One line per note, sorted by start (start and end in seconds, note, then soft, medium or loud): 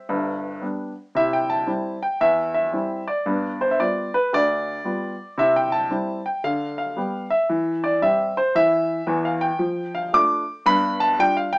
0.00 0.59 G4 medium
0.00 0.59 C5 medium
0.00 0.62 E5 medium
0.09 0.54 G1 medium
0.09 0.54 G2 medium
0.61 0.91 G3 soft
0.61 0.91 B3 soft
0.61 0.92 D4 soft
1.15 1.60 C3 medium
1.15 1.46 E4 medium
1.15 1.33 E5 medium
1.33 1.49 G5 medium
1.50 2.02 A5 medium
1.67 1.96 G3 soft
1.67 1.96 C4 soft
1.67 1.97 E4 soft
2.03 2.21 G5 medium
2.21 2.66 E2 medium
2.21 2.53 E5 medium
2.54 3.07 E5 medium
2.73 3.02 G3 soft
2.73 3.02 C4 soft
2.73 3.02 E4 soft
3.08 3.60 D5 medium
3.26 3.71 G2 medium
3.26 3.57 B3 medium
3.61 3.70 C5 medium
3.71 3.80 E5 medium
3.79 4.08 G3 soft
3.79 4.08 B3 soft
3.79 4.09 F4 soft
3.79 4.13 D5 medium
4.14 4.33 B4 medium
4.33 4.77 D2 medium
4.33 5.39 D5 loud
4.84 5.14 G3 medium
4.84 5.14 B3 soft
4.84 5.14 F4 soft
5.38 5.82 C3 medium
5.38 5.68 E4 soft
5.38 5.55 E5 medium
5.56 5.72 G5 medium
5.72 6.24 A5 medium
5.90 6.19 G3 soft
5.90 6.20 C4 soft
5.90 6.20 E4 soft
6.26 6.44 G5 medium
6.44 6.88 D3 medium
6.44 6.77 F5 loud
6.78 7.30 F5 medium
6.97 7.25 G3 soft
6.97 7.25 B3 soft
6.97 7.26 G4 medium
7.30 7.83 E5 medium
7.49 7.94 E3 medium
7.84 8.02 D5 medium
8.02 8.31 G3 soft
8.02 8.31 C4 soft
8.02 8.31 G4 medium
8.02 8.36 E5 medium
8.37 8.55 C5 medium
8.55 9.00 E3 medium
8.55 9.25 E5 loud
9.07 9.49 E2 medium
9.07 9.49 E3 medium
9.25 9.41 F5 medium
9.41 9.94 G5 medium
9.59 10.04 F3 medium
9.95 10.13 F5 medium
10.13 10.42 A3 medium
10.13 10.42 D4 medium
10.13 10.42 F4 medium
10.13 10.66 D6 loud
10.66 11.10 G2 medium
10.66 10.96 B3 medium
10.66 11.00 B5 loud
11.00 11.19 A5 loud
11.18 11.47 G3 soft
11.18 11.48 D4 medium
11.18 11.48 F4 medium
11.18 11.36 G5 loud
11.37 11.53 F5 medium
11.53 11.58 G5 loud